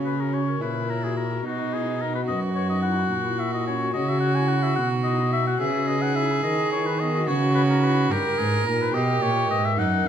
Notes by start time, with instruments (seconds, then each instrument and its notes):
Already playing: pipe organ C#3 F#4, cello C#3, violin C#4
0.05 pipe organ G#4, oboe B4
0.19 pipe organ F#4, oboe A#4
0.34 pipe organ C#4, oboe C#5
0.47 pipe organ A#4
0.61 cello A#2, pipe organ A#2 C#5, violin E4, oboe B4
0.75 pipe organ A#4
0.89 oboe A#4, pipe organ C#5
1.03 pipe organ F#4, oboe G#4
1.17 pipe organ G#4, oboe A#4
1.31 pipe organ F#4
1.45 pipe organ B2, cello B2, violin D#4, oboe F#4
1.58 pipe organ D#4
1.72 pipe organ E4, oboe G#4
1.86 pipe organ D#4
2.00 pipe organ B3, oboe A#4
2.13 pipe organ F#4, oboe B4
2.28 pipe organ F#2 B4, cello F#2, violin F#4, oboe D#5
2.42 pipe organ F#4
2.55 pipe organ B4, oboe C#5
2.69 pipe organ D#4, oboe D#5
2.82 pipe organ E4, oboe F#5
2.98 pipe organ D#4
3.11 cello A#2, pipe organ A#2
3.25 pipe organ E4
3.39 pipe organ F#4, oboe E5
3.53 pipe organ E4, oboe D#5
3.66 pipe organ C#4, oboe C#5
3.81 pipe organ F#4
3.94 cello C#3, pipe organ C#3 C#5, violin F#4, oboe D#5
4.08 pipe organ F#4, oboe E5
4.20 pipe organ C#5, oboe F#5
4.35 pipe organ E4, oboe G#5
4.48 pipe organ F#4, oboe F#5
4.63 pipe organ E4, oboe E5
4.76 cello B2, pipe organ B2, oboe F#5
4.92 pipe organ D#4
5.04 pipe organ E4, oboe D#5
5.20 pipe organ D#4
5.33 pipe organ B3, oboe E5
5.47 pipe organ F#4, oboe F#5
5.60 pipe organ C#3 B4, cello C#3, violin G#4, oboe E5
5.75 pipe organ F#4
5.87 pipe organ B4, oboe D#5
6.02 pipe organ D#4, oboe F#5
6.16 pipe organ E4, oboe E5
6.31 pipe organ D#4
6.43 pipe organ D#3, cello D#3, oboe D#5
6.58 pipe organ D#4
6.72 pipe organ E4, oboe C#5
6.86 pipe organ D#4, oboe B4
6.99 pipe organ B3, oboe D#5
7.14 pipe organ F#4
7.27 cello C#3, pipe organ C#3 B4, violin F#4, oboe C#5
7.41 pipe organ F#4
7.55 oboe B4, pipe organ B4
7.69 pipe organ D#4, oboe A#4
7.83 pipe organ E4, oboe B4
7.97 pipe organ D#4
8.11 cello G2, pipe organ G2, oboe G4, violin A#4
8.25 pipe organ A#4
8.38 cello G#2, pipe organ G#2 B4, oboe G#4
8.53 pipe organ A#4
8.66 cello A#2, pipe organ A#2 D#4, oboe A#4
8.81 pipe organ A#4, oboe B4
8.94 cello B2, pipe organ B2 D#5, violin G4, oboe D#5
9.08 pipe organ A#4
9.22 cello A#2, pipe organ A#2 D#5, oboe C#5
9.36 pipe organ A#4
9.49 cello G#2, pipe organ G#2 B4, oboe D#5
9.64 pipe organ A#4, oboe E5
9.77 pipe organ F#2, cello F#2, violin D#4, oboe F#5
9.91 pipe organ A#4
10.05 pipe organ E2 B4